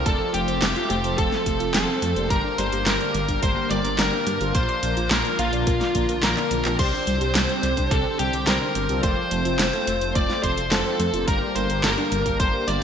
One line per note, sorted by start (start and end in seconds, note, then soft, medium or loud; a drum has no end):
0.00 0.31 C4 loud
0.00 2.26 C4 medium
0.00 0.31 F4 medium
0.00 0.31 A4 medium
0.00 0.31 D5 loud
0.06 0.18 F1 loud
0.06 2.28 F3 medium
0.06 0.12 A3 loud
0.06 2.28 A3 medium
0.06 0.32 A4 loud
0.06 0.32 A5 loud
0.06 kick loud
0.06 closed hi-hat medium
0.20 0.26 A4 medium
0.34 0.46 F1 medium
0.34 0.44 A3 medium
0.34 0.73 C4 medium
0.34 0.73 F4 medium
0.34 0.89 G4 loud
0.34 0.73 A4 medium
0.34 0.73 C5 medium
0.34 0.89 G5 loud
0.34 closed hi-hat medium
0.48 0.60 F1 medium
0.48 0.61 C5 medium
0.48 closed hi-hat soft
0.62 0.74 F1 loud
0.62 0.68 A3 loud
0.62 snare loud
0.62 clap loud
0.62 closed hi-hat medium
0.76 1.01 C4 medium
0.76 0.89 F4 loud
0.76 1.01 F4 medium
0.76 1.01 A4 medium
0.76 1.01 C5 loud
0.76 closed hi-hat soft
0.90 1.02 F1 loud
0.90 0.96 A3 loud
0.90 1.18 G4 medium
0.90 1.19 G5 loud
0.90 closed hi-hat medium
1.04 1.16 F1 medium
1.04 1.43 C4 medium
1.04 1.43 F4 medium
1.04 1.43 A4 medium
1.04 1.10 A4 medium
1.04 1.43 C5 medium
1.04 closed hi-hat medium
1.18 1.30 F1 loud
1.18 1.28 A3 medium
1.18 1.73 A4 loud
1.18 1.73 A5 loud
1.18 kick loud
1.18 closed hi-hat medium
1.32 1.46 C5 medium
1.32 snare soft
1.46 1.58 F1 loud
1.46 1.52 A3 loud
1.46 1.65 C4 medium
1.46 1.65 F4 medium
1.46 1.65 A4 medium
1.46 1.65 C5 medium
1.46 kick medium
1.46 closed hi-hat medium
1.60 1.72 F1 medium
1.60 1.74 F4 loud
1.60 closed hi-hat medium
1.74 1.86 F1 loud
1.74 1.80 A3 loud
1.74 2.13 C4 medium
1.74 2.13 F4 medium
1.74 2.13 A4 medium
1.74 2.30 A4 loud
1.74 2.13 C5 loud
1.74 2.32 A5 loud
1.74 snare loud
1.74 clap loud
1.74 closed hi-hat medium
1.88 1.94 A4 medium
2.02 2.14 F2 loud
2.02 2.12 A3 medium
2.02 closed hi-hat medium
2.16 2.28 F1 medium
2.16 2.55 A#3 loud
2.16 2.55 D4 medium
2.16 2.55 G4 medium
2.16 2.30 C5 medium
2.16 2.55 C5 loud
2.16 closed hi-hat medium
2.30 2.42 G1 loud
2.30 6.75 D3 medium
2.30 4.52 G3 medium
2.30 2.36 G3 loud
2.30 4.52 A#3 medium
2.30 2.59 A#4 loud
2.30 2.59 A#5 loud
2.30 kick loud
2.30 closed hi-hat medium
2.44 2.58 D4 loud
2.58 2.70 G1 loud
2.58 2.64 G3 loud
2.58 2.97 A#3 medium
2.58 2.97 D4 medium
2.58 2.97 G4 medium
2.58 2.97 A#4 medium
2.58 2.87 C5 loud
2.58 2.87 C6 loud
2.58 closed hi-hat medium
2.72 2.84 G1 medium
2.72 2.78 G4 medium
2.72 closed hi-hat medium
2.86 2.98 G1 loud
2.86 2.96 G3 medium
2.86 3.39 A#4 loud
2.86 3.39 A#5 loud
2.86 snare loud
2.86 clap loud
2.86 closed hi-hat medium
3.01 3.25 A#3 medium
3.01 3.25 D4 medium
3.01 3.25 G4 medium
3.01 3.14 A#4 medium
3.01 3.25 A#4 loud
3.01 closed hi-hat soft
3.14 3.26 G1 medium
3.14 3.20 G3 loud
3.14 closed hi-hat medium
3.29 3.40 G1 medium
3.29 3.67 A#3 medium
3.29 3.42 D4 loud
3.29 3.67 D4 medium
3.29 3.67 G4 medium
3.29 3.67 A#4 medium
3.29 kick medium
3.29 closed hi-hat medium
3.43 3.54 G1 loud
3.43 3.48 G3 loud
3.43 3.70 C5 loud
3.43 3.71 C6 loud
3.43 kick loud
3.43 closed hi-hat medium
3.57 3.63 G4 medium
3.70 3.82 G1 loud
3.70 3.80 G3 medium
3.70 3.89 A#3 medium
3.70 3.89 D4 medium
3.70 3.89 G4 medium
3.70 3.89 A#4 medium
3.70 4.00 D5 loud
3.70 4.00 D6 loud
3.70 closed hi-hat medium
3.85 3.96 G1 medium
3.85 3.98 A#4 medium
3.85 closed hi-hat medium
3.98 4.10 G1 loud
3.98 4.05 G3 loud
3.98 4.37 A#3 loud
3.98 4.37 D4 medium
3.98 4.37 G4 medium
3.98 4.37 A#4 loud
3.98 4.56 A#4 loud
3.98 4.56 A#5 loud
3.98 snare loud
3.98 clap loud
3.98 closed hi-hat medium
4.13 4.26 D4 loud
4.27 4.38 G2 loud
4.27 4.33 G3 loud
4.27 closed hi-hat medium
4.41 4.52 G1 medium
4.41 4.79 A#3 medium
4.41 4.79 D4 medium
4.41 4.79 F4 medium
4.41 4.47 G4 medium
4.41 4.79 C5 loud
4.41 closed hi-hat medium
4.55 4.66 A#1 loud
4.55 6.77 F3 medium
4.55 6.77 A#3 medium
4.55 4.65 A#3 medium
4.55 5.13 C5 loud
4.55 5.12 C6 loud
4.55 kick loud
4.55 closed hi-hat medium
4.69 4.82 D5 medium
4.69 closed hi-hat soft
4.83 4.94 A#1 medium
4.83 4.89 A#3 loud
4.83 5.21 A#3 medium
4.83 5.21 D4 medium
4.83 5.21 F4 medium
4.83 5.21 A#4 medium
4.83 closed hi-hat medium
4.97 5.08 A#1 medium
4.97 5.10 F4 loud
4.97 closed hi-hat medium
5.11 5.22 A#1 loud
5.11 5.17 A#3 loud
5.11 5.37 A#4 loud
5.11 5.37 A#5 loud
5.11 snare loud
5.11 clap loud
5.11 closed hi-hat medium
5.25 5.50 A#3 medium
5.25 5.50 D4 medium
5.25 5.50 F4 medium
5.25 5.31 A#4 medium
5.25 5.50 A#4 loud
5.25 closed hi-hat soft
5.39 5.50 A#1 loud
5.39 5.49 A#3 medium
5.39 6.26 F4 loud
5.39 6.26 F5 loud
5.39 closed hi-hat medium
5.53 5.64 A#1 medium
5.53 5.92 A#3 medium
5.53 5.92 D4 medium
5.53 5.92 F4 medium
5.53 5.92 A#4 medium
5.53 5.66 D5 medium
5.53 closed hi-hat medium
5.67 5.79 A#1 loud
5.67 5.73 A#3 loud
5.67 kick loud
5.67 closed hi-hat medium
5.81 5.94 F4 loud
5.81 snare soft
5.81 closed hi-hat soft
5.95 6.07 A#1 loud
5.95 6.13 A#3 medium
5.95 6.01 A#3 loud
5.95 6.13 D4 medium
5.95 6.13 F4 medium
5.95 6.13 A#4 medium
5.95 kick medium
5.95 closed hi-hat medium
6.09 6.21 A#1 medium
6.09 6.15 A#4 medium
6.09 closed hi-hat medium
6.23 6.35 A#1 loud
6.23 6.62 A#3 medium
6.23 6.33 A#3 medium
6.23 6.62 D4 medium
6.23 6.62 F4 medium
6.23 6.62 A#4 loud
6.23 6.75 A#4 loud
6.23 6.75 A#5 loud
6.23 snare loud
6.23 clap loud
6.23 closed hi-hat medium
6.37 6.50 D5 medium
6.37 clap medium
6.37 closed hi-hat soft
6.51 6.63 A#1 loud
6.51 6.57 A#3 loud
6.51 closed hi-hat medium
6.65 6.77 A#1 medium
6.65 7.04 C4 loud
6.65 7.04 D4 medium
6.65 6.78 F4 loud
6.65 7.04 G4 medium
6.65 7.04 D5 loud
6.65 clap loud
6.65 closed hi-hat medium
6.79 6.91 C2 loud
6.79 9.01 D3 medium
6.79 9.01 G3 medium
6.79 6.85 G3 loud
6.79 11.24 C4 medium
6.79 7.95 C5 loud
6.79 7.95 C6 loud
6.79 kick loud
6.79 closed hi-hat medium
6.79 crash medium
6.93 7.06 D4 loud
7.07 7.19 C2 medium
7.07 7.13 G3 loud
7.07 7.46 C4 medium
7.07 7.46 D4 medium
7.07 7.46 G4 medium
7.07 7.46 C5 medium
7.07 closed hi-hat medium
7.21 7.33 C2 medium
7.21 7.27 G4 medium
7.21 closed hi-hat medium
7.35 7.47 C2 loud
7.35 7.45 G3 medium
7.35 snare loud
7.35 clap loud
7.35 closed hi-hat medium
7.49 7.74 C4 medium
7.49 7.74 D4 medium
7.49 7.74 G4 medium
7.49 7.74 C5 loud
7.49 7.62 C5 medium
7.49 closed hi-hat soft
7.63 7.75 C2 loud
7.63 7.69 G3 loud
7.63 closed hi-hat medium
7.77 7.89 C2 medium
7.77 8.16 C4 medium
7.77 7.90 D4 loud
7.77 8.16 D4 medium
7.77 8.16 G4 medium
7.77 8.16 C5 medium
7.77 kick medium
7.77 closed hi-hat medium
7.91 8.03 C2 loud
7.91 7.97 G3 loud
7.91 8.19 A4 loud
7.91 8.20 A5 loud
7.91 kick loud
7.91 closed hi-hat medium
8.05 8.11 G4 medium
8.19 8.31 C2 loud
8.19 8.29 G3 medium
8.19 8.38 C4 medium
8.19 8.38 D4 medium
8.19 8.38 G4 medium
8.19 8.45 G4 medium
8.19 8.38 C5 medium
8.19 8.45 G5 medium
8.19 closed hi-hat medium
8.33 8.45 C2 medium
8.33 8.47 C5 medium
8.33 closed hi-hat medium
8.47 8.59 C2 loud
8.47 8.53 G3 loud
8.47 8.86 C4 medium
8.47 8.86 D4 medium
8.47 8.86 G4 medium
8.47 8.99 A#4 loud
8.47 8.86 C5 loud
8.47 8.99 A#5 loud
8.47 snare loud
8.47 clap loud
8.47 closed hi-hat medium
8.61 8.75 D4 loud
8.75 8.87 G1 loud
8.75 8.81 G3 loud
8.75 closed hi-hat medium
8.89 9.01 C2 medium
8.89 9.28 C4 medium
8.89 9.28 F4 medium
8.89 8.95 G4 medium
8.89 9.28 A4 medium
8.89 9.28 D5 loud
8.89 closed hi-hat medium
9.03 9.15 F1 loud
9.03 11.25 F3 medium
9.03 11.25 A3 medium
9.03 9.13 A3 medium
9.03 10.11 C5 loud
9.03 10.12 C6 loud
9.03 kick loud
9.03 closed hi-hat medium
9.17 9.31 C5 medium
9.31 9.43 F1 medium
9.31 9.37 A3 loud
9.31 9.70 C4 medium
9.31 9.70 F4 medium
9.31 9.70 A4 medium
9.31 9.70 C5 medium
9.31 closed hi-hat medium
9.45 9.57 F1 medium
9.45 9.59 F4 loud
9.45 closed hi-hat medium
9.59 9.71 F1 loud
9.59 9.65 A3 loud
9.59 snare loud
9.59 clap loud
9.59 closed hi-hat medium
9.73 9.98 C4 medium
9.73 9.98 F4 medium
9.73 9.98 A4 medium
9.73 9.79 A4 medium
9.73 9.98 C5 loud
9.73 closed hi-hat soft
9.87 9.99 F1 medium
9.87 9.97 A3 medium
9.87 closed hi-hat medium
10.01 10.13 F1 medium
10.01 10.40 C4 medium
10.01 10.40 F4 medium
10.01 10.40 A4 medium
10.01 10.15 C5 medium
10.01 10.40 C5 medium
10.01 closed hi-hat medium
10.15 10.27 F1 loud
10.15 10.21 A3 loud
10.15 10.43 D5 loud
10.15 10.44 D6 loud
10.15 kick loud
10.15 closed hi-hat medium
10.29 10.43 F4 loud
10.29 snare soft
10.43 10.55 F1 loud
10.43 10.49 A3 loud
10.43 10.62 C4 medium
10.43 10.62 F4 medium
10.43 10.62 A4 medium
10.43 10.70 C5 loud
10.43 10.62 C5 medium
10.43 10.70 C6 medium
10.43 kick medium
10.43 closed hi-hat medium
10.57 10.69 F1 medium
10.57 10.63 A4 medium
10.57 closed hi-hat medium
10.71 10.83 F1 loud
10.71 10.81 A3 medium
10.71 11.10 C4 medium
10.71 11.10 F4 medium
10.71 11.24 A4 loud
10.71 11.10 A4 medium
10.71 11.10 C5 loud
10.71 11.24 A5 loud
10.71 snare loud
10.71 clap loud
10.71 closed hi-hat medium
10.86 10.99 C5 medium
11.00 11.11 F2 loud
11.00 11.05 A3 loud
11.00 closed hi-hat medium
11.13 11.25 F1 medium
11.13 11.52 A#3 loud
11.13 11.52 D4 medium
11.13 11.27 F4 loud
11.13 11.52 G4 medium
11.13 11.52 C5 loud
11.13 closed hi-hat medium
11.27 11.39 G1 loud
11.27 12.83 D3 medium
11.27 11.33 G3 loud
11.27 12.83 G3 medium
11.27 12.83 A#3 medium
11.27 11.54 A#4 loud
11.27 11.54 A#5 loud
11.27 kick loud
11.27 closed hi-hat medium
11.42 11.48 G4 medium
11.55 11.67 G1 loud
11.55 11.66 G3 medium
11.55 11.94 A#3 medium
11.55 11.94 D4 medium
11.55 11.94 G4 medium
11.55 11.94 A#4 medium
11.55 11.82 C5 loud
11.55 11.81 C6 medium
11.55 closed hi-hat medium
11.70 11.81 G1 medium
11.70 11.83 A#4 medium
11.70 closed hi-hat medium
11.83 11.95 G1 loud
11.83 11.90 G3 loud
11.83 12.36 A#4 medium
11.83 12.36 A#5 medium
11.83 snare loud
11.83 clap loud
11.83 closed hi-hat medium
11.98 12.22 A#3 medium
11.98 12.22 D4 medium
11.98 12.11 D4 loud
11.98 12.22 G4 medium
11.98 12.22 A#4 loud
11.98 closed hi-hat soft
12.12 12.23 G1 loud
12.12 12.18 G3 loud
12.12 closed hi-hat medium
12.26 12.37 G1 medium
12.26 12.64 A#3 medium
12.26 12.64 D4 medium
12.26 12.64 G4 medium
12.26 12.32 G4 medium
12.26 12.64 A#4 medium
12.26 kick medium
12.26 closed hi-hat medium
12.39 12.51 G1 loud
12.39 12.50 G3 medium
12.39 12.69 C5 loud
12.39 12.68 C6 loud
12.39 kick loud
12.39 closed hi-hat medium
12.54 12.67 A#4 medium
12.67 12.80 G1 medium
12.67 12.74 G3 loud
12.67 12.83 A#3 medium
12.67 12.83 D4 medium
12.67 12.83 G4 medium
12.67 12.83 A#4 medium
12.67 12.83 D5 medium
12.67 12.83 D6 loud
12.67 closed hi-hat medium